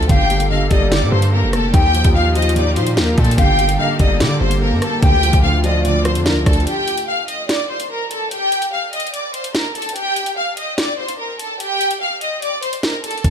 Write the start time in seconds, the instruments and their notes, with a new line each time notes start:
Already playing: grand piano D3 F3 D4
0.03 closed hi-hat
0.09 808-style bass G1, grand piano D3, analog synth pad A#3 G4 A4, violin section G4 G5, pan flute F5, kick, closed hi-hat
0.30 grand piano G3, closed hi-hat
0.40 closed hi-hat
0.50 grand piano D3, pan flute D#5, violin section F5 F6
0.71 808-style bass G1, grand piano G3, pan flute D5, violin section D#5 D#6, kick, closed hi-hat
0.91 grand piano D3, violin section D5 D6, snare, closed hi-hat
1.02 808-style bass A#2
1.11 808-style bass G2, grand piano G3, violin section C5 C6
1.22 closed hi-hat
1.33 grand piano A#3, violin section A#4 A#5
1.43 808-style bass F1
1.53 grand piano A#3, violin section A4 A5, cross-stick, closed hi-hat
1.74 808-style bass D#2, grand piano D#3, analog synth pad D#4 F4, violin section G4 G5, pan flute G5, kick, closed hi-hat
1.94 grand piano F3, closed hi-hat
2.04 808-style bass D#2, kick, closed hi-hat
2.15 grand piano D#3, pan flute F5, violin section F5 F6
2.35 grand piano F3, pan flute D#5, violin section D#5 D#6, closed hi-hat
2.42 closed hi-hat
2.49 closed hi-hat
2.56 grand piano D#3, violin section D5 D6, closed hi-hat
2.76 808-style bass A#2, grand piano F3, violin section C5 C6, closed hi-hat
2.87 closed hi-hat
2.97 808-style bass D#2, grand piano A#3, violin section A#4 A#5, snare
3.18 808-style bass A#2, grand piano A#3, violin section A4 A5, kick, closed hi-hat, open hi-hat
3.24 closed hi-hat
3.31 closed hi-hat
3.38 808-style bass G1, grand piano D3, analog synth pad A#3 A4, violin section G4 G5, pan flute F5, kick, closed hi-hat
3.59 grand piano G3, closed hi-hat
3.69 closed hi-hat
3.79 grand piano D3, pan flute D#5, violin section F5 F6
3.99 808-style bass G1, grand piano G3, pan flute D5, violin section D#5 D#6, kick, closed hi-hat
4.20 808-style bass D3, grand piano D3, violin section D5 D6, snare, closed hi-hat
4.40 808-style bass G1, grand piano G3, violin section C5 C6
4.51 closed hi-hat
4.61 grand piano A#3, violin section A#4 A#5
4.72 808-style bass G2
4.82 grand piano A#3, violin section A4 A5, cross-stick, closed hi-hat
5.02 808-style bass D2, analog synth pad D3 A3 F4, grand piano D3, violin section G4 G5, pan flute G5, kick, closed hi-hat
5.23 grand piano F3, closed hi-hat
5.33 808-style bass D2, kick, closed hi-hat
5.43 grand piano D3, violin section F5 F6, pan flute F5
5.64 grand piano F3, pan flute D5, violin section D#5 D#6, closed hi-hat
5.85 grand piano D3, violin section D5 D6, closed hi-hat
6.05 grand piano F3, violin section C5 C6, cross-stick, closed hi-hat
6.15 808-style bass F2, closed hi-hat
6.26 grand piano D4, violin section A#4 A#5, snare
6.31 808-style bass D2
6.46 808-style bass D2, grand piano D4, violin section A4 A5, kick, cross-stick, closed hi-hat
6.53 closed hi-hat
6.60 closed hi-hat
6.67 violin section G4 G5, closed hi-hat
6.88 closed hi-hat
6.97 closed hi-hat
7.08 violin section F5 F6
7.28 violin section D#5 D#6, closed hi-hat
7.49 violin section D5 D6, snare, closed hi-hat
7.70 violin section C5 C6
7.80 closed hi-hat
7.90 violin section A#4 A#5
8.11 violin section A4 A5, closed hi-hat
8.31 violin section G4 G5, closed hi-hat
8.52 closed hi-hat
8.62 closed hi-hat
8.72 violin section F5 F6
8.93 violin section D#5 D#6, closed hi-hat
9.00 closed hi-hat
9.07 closed hi-hat
9.13 violin section D5 D6, closed hi-hat
9.34 violin section C5 C6, closed hi-hat
9.44 closed hi-hat
9.54 violin section A#4 A#5, snare
9.75 violin section A4 A5, closed hi-hat, open hi-hat
9.82 closed hi-hat
9.89 closed hi-hat
9.96 violin section G4 G5, closed hi-hat
10.16 closed hi-hat
10.26 closed hi-hat
10.37 violin section F5 F6
10.57 violin section D#5 D#6, closed hi-hat
10.78 violin section D5 D6, snare, closed hi-hat
10.98 violin section C5 C6
11.08 closed hi-hat
11.19 violin section A#4 A#5
11.39 violin section A4 A5, closed hi-hat
11.60 violin section G4 G5, closed hi-hat
11.81 closed hi-hat
11.91 closed hi-hat
12.01 violin section F5 F6
12.21 violin section D#5 D#6, closed hi-hat
12.42 violin section D5 D6, closed hi-hat
12.63 violin section C5 C6, closed hi-hat
12.73 closed hi-hat
12.83 violin section A#4 A#5, snare
13.04 violin section A4 A5, closed hi-hat
13.11 closed hi-hat
13.18 closed hi-hat
13.24 808-style bass G1, kick, closed hi-hat